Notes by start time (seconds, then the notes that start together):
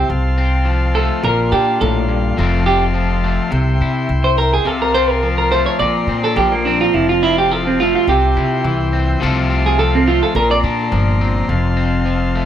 Already playing: C4 C6
0.09 C2 F5 A5, muted clean electric guitar stroke
0.38 C4
0.65 F3
0.95 A3 A4
1.23 A#1 A#2 A#4 D5 F5
1.52 A#2 D4 G4
1.81 A#1 A2 A4
2.09 G2
2.37 F1 F2 F3 A3 C4 F5 A5
2.66 C4 G4
2.94 F3
3.24 A3
3.51 C2 C3 E5 G5
3.81 C3 E4
4.09 C2
4.24 C5
4.38 A#4, muted clean electric guitar stroke
4.54 G#4
4.65 C2 C3 A4 F5 A5
4.82 A#4
4.95 C4 C5
5.10 A#4
5.23 F3
5.38 A#4
5.52 A3 C5
5.66 C#5
5.79 A#1 A#2 D5 A#5 C6
6.07 A#2 C4
6.24 D4 A4
6.36 A#1 F3 G4
6.52 A#3
6.65 C4 D4
6.81 F4
6.94 F1 F2 E4 F5 A5
7.09 F4
7.23 C4 E4
7.38 G4
7.51 F3 A4
7.67 C4
7.80 A3 F4
7.96 F4
8.07 C2 C3 G4 E5 G5 C6
8.37 C3 E4
8.64 C2 E3
8.93 C4
9.20 C2 C3 F3 A3 C4 A4 F5 A5
9.50 C4
9.66 G#4
9.79 F3 A4
9.95 C4
10.07 A3 F4
10.23 A4
10.35 A#1 A#2 A#4 D5 A#5
10.51 D5
10.63 A#2 D4
10.92 G1 F3
11.21 C4
11.49 F1 F2 F5 A5
11.77 C4
12.06 F3
12.35 A3